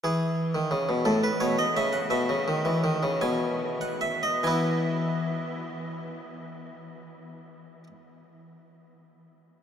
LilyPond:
<<
  \new Staff \with { instrumentName = "Harpsichord" } { \time 6/8 \key e \major \tempo 4. = 46 gis'4. a'16 b'16 cis''16 dis''16 e''16 fis''16 | e''4. gis''8. fis''16 e''16 dis''16 | <b e' gis''>2.~ | <b e' gis''>2. | }
  \new Staff \with { instrumentName = "Harpsichord" } { \clef bass \time 6/8 \key e \major e8. dis16 cis16 b,16 a,8 b,8 cis8 | b,16 cis16 dis16 e16 dis16 cis16 b,4. | e2.~ | e2. | }
>>